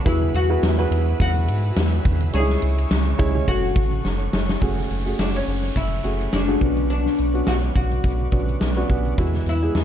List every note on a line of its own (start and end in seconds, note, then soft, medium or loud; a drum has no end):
0.00 2.29 F#5 medium
0.05 0.29 E2 loud
0.05 0.87 E3 medium
0.05 0.41 B3 medium
0.05 0.41 E4 medium
0.05 0.35 E4 medium
0.05 0.41 F#4 medium
0.05 0.41 G#4 medium
0.05 3.44 G#4 medium
0.05 0.41 B4 medium
0.05 3.44 E5 medium
0.05 2.32 B5 medium
0.05 kick loud
0.05 ride medium
0.34 0.57 E2 medium
0.34 1.20 F#4 loud
0.34 ride medium
0.50 0.72 B3 medium
0.50 0.72 E4 medium
0.50 0.72 F#4 medium
0.50 0.72 G#4 medium
0.50 0.72 B4 medium
0.63 0.86 E2 loud
0.63 snare loud
0.63 ride medium
0.78 1.69 B3 medium
0.78 1.69 E4 medium
0.78 1.69 F#4 medium
0.78 1.70 G#4 medium
0.78 1.70 B4 loud
0.91 1.14 E2 loud
0.91 ride medium
1.20 1.50 E2 loud
1.20 2.35 F#4 loud
1.20 kick medium
1.20 ride medium
1.48 1.72 G#2 loud
1.48 ride medium
1.76 2.00 E2 loud
1.76 snare loud
1.76 ride medium
2.05 2.29 E2 medium
2.05 kick loud
2.05 ride medium
2.20 ride soft
2.33 2.57 C#2 loud
2.33 3.15 C#3 medium
2.33 3.03 G#3 medium
2.33 3.04 C#4 medium
2.33 2.41 D4 medium
2.33 3.04 G#4 medium
2.33 3.16 G#4 loud
2.33 3.04 C#5 medium
2.33 3.47 C#5 medium
2.33 4.59 C#6 medium
2.33 ride medium
2.40 3.07 E4 medium
2.50 snare soft
2.62 2.86 C#2 loud
2.62 ride medium
2.78 ride soft
2.91 3.14 C#2 loud
2.91 snare loud
2.91 ride medium
3.18 3.43 C#2 loud
3.18 3.32 G#3 loud
3.18 3.32 C#4 medium
3.18 3.32 E4 medium
3.18 3.32 G#4 medium
3.18 3.32 C#5 loud
3.18 kick loud
3.18 ride medium
3.34 3.47 G#3 medium
3.34 3.46 C#4 medium
3.34 3.47 E4 medium
3.34 3.48 G#4 medium
3.34 3.47 C#5 medium
3.48 3.71 F#1 loud
3.48 4.40 A3 medium
3.48 4.40 C#4 medium
3.48 4.40 F#4 medium
3.48 4.01 F#4 loud
3.48 4.40 A4 medium
3.48 4.61 A4 medium
3.48 4.61 C#5 medium
3.48 4.40 C#5 medium
3.48 4.60 F#5 medium
3.48 kick medium
3.48 ride medium
3.76 3.99 A1 medium
3.76 kick loud
3.76 ride medium
4.04 4.28 F#1 loud
4.04 snare medium
4.33 4.56 F#1 medium
4.33 snare loud
4.49 snare loud
4.61 4.85 F#1 loud
4.61 4.96 A3 medium
4.61 6.59 A3 medium
4.61 4.97 C#4 medium
4.61 4.97 F#4 medium
4.61 4.97 G#4 medium
4.61 9.14 F#5 medium
4.61 6.59 G#5 medium
4.61 9.14 C#6 medium
4.61 kick medium
4.61 closed hi-hat medium
4.61 downlifter medium
4.78 snare soft
4.90 5.13 F#1 medium
4.90 closed hi-hat medium
5.06 5.85 A3 medium
5.06 5.85 C#4 medium
5.06 5.86 F#4 medium
5.06 5.86 G#4 medium
5.06 closed hi-hat soft
5.19 5.42 F#1 loud
5.19 5.35 D4 medium
5.19 snare loud
5.35 5.73 C#4 medium
5.35 closed hi-hat soft
5.47 5.71 F#1 loud
5.47 closed hi-hat medium
5.64 closed hi-hat soft
5.76 5.99 F#1 medium
5.76 6.33 E4 medium
5.76 kick medium
5.76 closed hi-hat medium
6.04 6.28 F#1 medium
6.04 6.39 A3 medium
6.04 6.39 C#4 medium
6.04 6.39 F#4 medium
6.04 6.39 G#4 medium
6.04 closed hi-hat medium
6.20 closed hi-hat soft
6.33 6.56 F#1 loud
6.33 6.86 D4 medium
6.33 snare loud
6.48 6.58 A3 medium
6.48 6.58 C#4 medium
6.48 6.59 F#4 medium
6.48 6.59 G#4 medium
6.61 7.08 B1 medium
6.61 7.43 B2 soft
6.61 7.18 B3 medium
6.61 7.18 C#4 medium
6.61 7.18 D4 medium
6.61 7.19 F#4 medium
6.61 9.84 B4 medium
6.61 9.15 D6 medium
6.61 kick medium
6.61 closed hi-hat medium
6.77 closed hi-hat soft
6.90 7.47 D4 medium
6.90 closed hi-hat medium
7.06 snare soft
7.18 7.42 B1 medium
7.18 closed hi-hat medium
7.34 8.14 B3 medium
7.34 8.14 C#4 medium
7.34 8.14 D4 medium
7.34 8.14 F#4 medium
7.34 closed hi-hat soft
7.47 7.70 B1 loud
7.47 7.55 F#4 loud
7.47 snare loud
7.63 closed hi-hat soft
7.76 7.99 B1 loud
7.76 8.86 F#4 medium
7.76 kick medium
7.76 closed hi-hat medium
7.91 closed hi-hat soft
8.04 8.27 B1 loud
8.04 kick medium
8.04 closed hi-hat medium
8.32 8.56 B1 medium
8.32 8.67 B3 medium
8.32 8.67 C#4 medium
8.32 8.68 D4 medium
8.32 8.68 F#4 medium
8.32 kick medium
8.32 closed hi-hat medium
8.48 closed hi-hat soft
8.61 8.84 B1 medium
8.61 snare loud
8.77 8.87 B3 medium
8.77 8.87 C#4 medium
8.77 8.87 D4 medium
8.77 8.87 F#4 medium
8.77 closed hi-hat soft
8.89 9.13 B1 loud
8.89 9.13 B3 medium
8.89 9.13 C#4 medium
8.89 9.13 D4 medium
8.89 9.13 F#4 medium
8.89 kick medium
8.89 closed hi-hat medium
9.05 closed hi-hat soft
9.18 9.42 E2 loud
9.18 9.84 E3 medium
9.18 9.53 G#3 medium
9.18 9.53 B3 medium
9.18 9.53 E4 medium
9.18 9.54 F#4 medium
9.18 9.84 F#5 medium
9.18 9.84 G#5 medium
9.18 9.84 E6 medium
9.18 kick medium
9.18 closed hi-hat medium
9.34 snare soft
9.46 9.70 E2 medium
9.46 9.84 E4 medium
9.46 closed hi-hat medium
9.62 9.84 G#3 medium
9.62 9.84 B3 medium
9.62 9.84 E4 medium
9.62 9.84 G#4 medium
9.62 closed hi-hat soft
9.75 9.84 E2 loud
9.75 snare loud